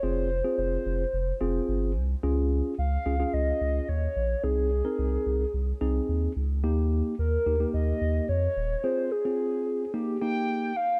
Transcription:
X:1
M:4/4
L:1/16
Q:1/4=109
K:Fm
V:1 name="Soft synth lead"
c4 c6 z6 | z4 f4 e4 d4 | A12 z4 | z4 B4 e4 d4 |
c2 A6 G2 g4 f2 |]
V:2 name="Tine electric piano"
[CFA]2 z [CFA]4 z3 [CFA]4 z2 | [DFA]4 z2 [DFA] [DFA]4- [DFA] z4 | [CEA]2 z [CEB]4 z3 [CEA]4 z2 | [B,EG]4 z2 [B,EG] [B,EG]4- [B,EG] z4 |
[CFA]2 z [CFA]4 z [B,EG]2 [B,EG]4 z2 |]
V:3 name="Sub bass" clef=bass
F,,,4 F,,,2 F,,,2 F,,,2 F,,,2 G,,,2 C,,2 | D,,4 D,,2 D,,2 D,,2 D,,2 E,,2 B,,,2 | C,,4 C,,2 C,,2 C,,2 C,,2 E,,2 D,,2 | E,,4 E,,2 E,,2 E,,2 E,,2 F,,2 E,,,2 |
z16 |]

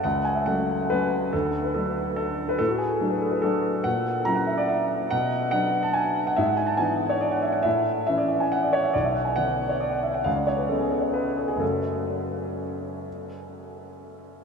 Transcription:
X:1
M:3/4
L:1/16
Q:1/4=139
K:F#m
V:1 name="Grand piano"
f2 g e f4 B4 | A3 B A4 A3 B | A F G3 B A B A2 z2 | f4 ^a f e d e4 |
f4 f3 a g3 f | e f g a g3 c d f e f | e4 e d e g f d c e | d e f g f3 c d f e f |
^e d c B A G A c B2 A G | A12- | A8 z4 |]
V:2 name="Grand piano" clef=bass
C,,4 [F,A,C]4 [F,A,C]4 | D,,4 [F,A,D]8 | A,,4 [F,A,D]4 [F,A,D]4 | ^A,,4 [F,CE]8 |
B,,4 [F,B,D]8 | G,,4 [E,B,D]8 | A,,4 [E,C]8 | B,,,4 [D,B,D]8 |
C,,4 [C,G,B,]8 | [F,,C,F,A,]12- | [F,,C,F,A,]12 |]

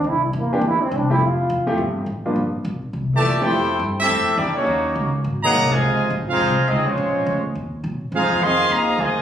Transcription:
X:1
M:4/4
L:1/8
Q:"Swing" 1/4=208
K:Cmix
V:1 name="Trumpet section"
z8 | z8 | z4 z [Gdea]2 [EAcg]- | [EAcg]2 z [CGAe]3 [B,EGd] [B,_E_G_d]- |
[B,_E_G_d]3 z2 [_A_e_gb]2 [Fce_a]- | [Fc_e_a]2 z [_E_Acf]3 [CFAe] [_A,Fc_d]- | [_A,Fc_d]3 z4 z | [_E_Acf]2 [A_efc']2 [Aefb]2 [Fce_a]2 |]
V:2 name="Trombone"
E G, B, D E C D E | F3 z4 z | z8 | z8 |
z8 | z8 | z8 | z8 |]
V:3 name="Grand piano"
z3 [E,B,CDG] z3 [F,A,CEG] | z3 [F,A,CEG] z3 [F,G,B,DF] | z6 z [F,A,CEG] | z8 |
z8 | z8 | z8 | z8 |]
V:4 name="Trombone section" clef=bass
z8 | z8 | z4 z [B,,E,A,]2 [CEG]- | [CEG]2 z [A,CE]3 D [_G,B,_D]- |
[_G,B,_D]3 z2 [_E,G,B,]2 [C,F,_A,]- | [C,F,_A,]2 z [A,CF]3 [A,C_E] [F,A,_D]- | [F,_A,_D]3 z4 z | [F,CF]2 [_E,F,C]2 [E,F,B,]2 [E,F,_A,]2 |]
V:5 name="Upright bass" clef=bass
C,,2 E,,2 D,, z C,,2 | F,,,2 E,,,2 G,,,2 A,,,2 | G,,,2 B,,, z C,,2 D,, z | F,,2 G,,2 F,,2 E,, z |
_E,,2 _D,,2 _A,,,2 C,,2 | _D,,2 (3B,,, _A,,, F,,, (3C,, A,,, F,,, D,, z | B,,, z D,,2 _E,,2 B,, z | (3_A,, F,, _E,, F,,2 E,,2 D,,2 |]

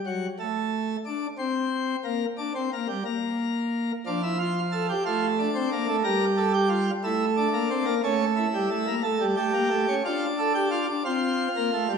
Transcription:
X:1
M:12/8
L:1/16
Q:3/8=60
K:Dphr
V:1 name="Pipe organ"
^F,2 A,4 D2 C4 B,2 D C B, G, B,6 | D =E F2 A G F2 D4 B2 A G F2 E2 D4 | ^C2 =E4 A2 G4 F2 A G F D F6 |]
V:2 name="Pipe organ"
z24 | F,6 A,3 C B, A, G,6 A,3 B, C B, | A,3 G, A, B, A, G, A, B, A, ^C D6 =C3 B, A, G, |]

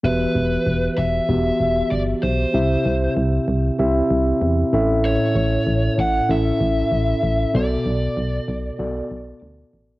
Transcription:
X:1
M:4/4
L:1/8
Q:1/4=96
K:Em
V:1 name="Lead electric guitar"
B3 e3 d c- | c2 z6 | ^c3 f e4 | d6 z2 |]
V:2 name="Tine electric piano"
[E,B,FGe]3 z [B,FGe]3 z | [C,CEGe]3 z [CEGe]3 [A,,^CEAe]- | [A,,^CEAe]2 z2 [CEAe]3 z | [B,,B,FAd]3 z [B,FAd]3 z |]
V:3 name="FM bass" clef=bass
E,,, E,,, E,,, E,,, E,,, E,,, G,,, B,,, | C,, C,, C,, C,, C,, C,, E,, A,,,- | A,,, A,,, A,,, A,,, A,,, A,,, A,,, A,,, | B,,, B,,, B,,, B,,, B,,, B,,, D,, A,,, |]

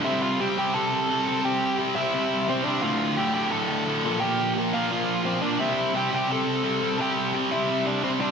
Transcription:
X:1
M:4/4
L:1/8
Q:1/4=173
K:Cmix
V:1 name="Lead electric guitar"
[Ee] [Ff] [Gg] [Gg] [Aa]4 | [Gg]2 z [Ee]3 [Cc] [Dd] | [Ff]2 [Gg] [Gg] [Aa]4 | [Gg]2 z [Ff]3 [Cc] [Dd] |
[Ee]2 [Gg] [Gg] [Aa]4 | [Gg]2 z [Ee]2 [Dd] [Cc] [Dd] |]
V:2 name="Distorted electric guitar" clef=bass
[C,G,C]2 [C,G,C] [C,G,C] [C,G,C]2 [C,G,C] [C,G,C] | [C,G,C]2 [C,G,C] [C,G,C] [C,G,C]2 [C,G,C] [C,G,C] | [D,,A,,D,]2 [D,,A,,D,] [D,,A,,D,] [D,,A,,D,]2 [D,,A,,D,] [B,,F,B,] | [B,,F,B,]2 [B,,F,B,] [B,,F,B,] [B,,F,B,]2 [B,,F,B,] [B,,F,B,] |
[C,G,C]2 [C,G,C] [C,G,C] [C,G,C]2 [C,G,C] [C,G,C] | [C,G,C]2 [C,G,C] [C,G,C] [C,G,C]2 [C,G,C] [C,G,C] |]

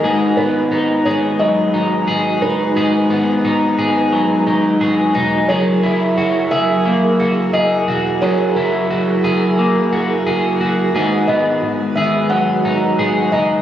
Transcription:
X:1
M:4/4
L:1/16
Q:1/4=88
K:G#m
V:1 name="Felt piano"
z2 B4 c2 d6 B2- | B12- B2 z2 | c6 e4 z2 d4 | c6 z8 z2 |
z2 d4 e2 f6 d2 |]
V:2 name="Tonewheel organ"
[G,DFB]16- | [G,DFB]16 | [F,EGA]16- | [F,EGA]16 |
[D,G,FB]16 |]
V:3 name="Clean electric guitar"
[G,,G]2 B,2 D2 G2 F,2 D2 G2 D2 | [G,,G]2 B,2 D2 G2 F,2 D2 G2 D2 | [F,G]2 E2 F2 G2 A,2 F2 G2 F2 | [F,G]2 E2 F2 G2 A,2 F2 G2 F2 |
[G,,G]2 B,4 G2 F,2 D2 G2 D2 |]
V:4 name="Picked electric bass" clef=bass
G,,,2 G,,,2 G,,,2 G,,,3 z G,,,2 G,,,2 F,,,2 | G,,,2 G,,,2 G,,,2 G,,,3 z G,,,2 G,,,2 E,,,2 | F,,,2 F,,,2 F,,,2 F,,,3 z F,,,2 F,,,2 E,,,2 | F,,,2 F,,,2 F,,,2 F,,,3 z F,,,2 F,,,2 F,,,2 |
G,,,2 G,,,2 G,,,2 G,,,3 z G,,,2 G,,,2 F,,,2 |]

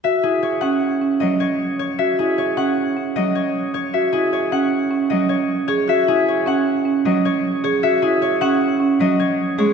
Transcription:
X:1
M:5/4
L:1/8
Q:1/4=154
K:C#m
V:1 name="Harp"
e G c f3 d c2 c | e G c f3 d c2 c | e G c f3 d c2 c | e G c f3 d c2 c |
e G c f3 d c2 c |]
V:2 name="Marimba"
F E z C z C z4 | F E z C z C z4 | F E z C z C z3 G | F E z C z C z3 G |
F E z C z C z3 G |]
V:3 name="Cello" clef=bass
z6 F, z3 | z6 F, z3 | z6 F, z3 | z6 F, z3 |
z6 F, z2 G, |]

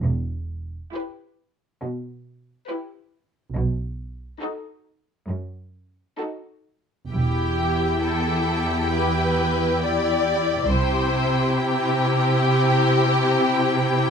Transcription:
X:1
M:4/4
L:1/8
Q:1/4=68
K:Em
V:1 name="Violin section"
z2 B2 z2 B2 | z2 A2 z2 A2 | g8 | g8 |]
V:2 name="Violin section"
z2 G2 z2 G2 | z2 F2 z2 F2 | G2 A2 B2 d2 | c2 G6 |]
V:3 name="Viola section"
z2 E2 z2 E2 | z2 ^D2 z2 D2 | [EG]8 | [EG]8 |]
V:4 name="Cello section" clef=bass
E,,2 z2 B,,2 z2 | B,,2 z2 F,,2 z2 | E,,8 | C,8 |]
V:5 name="Double bass section" clef=bass
E,,,2 z6 | B,,,2 z6 | E,,,2 z6 | C,,2 z6 |]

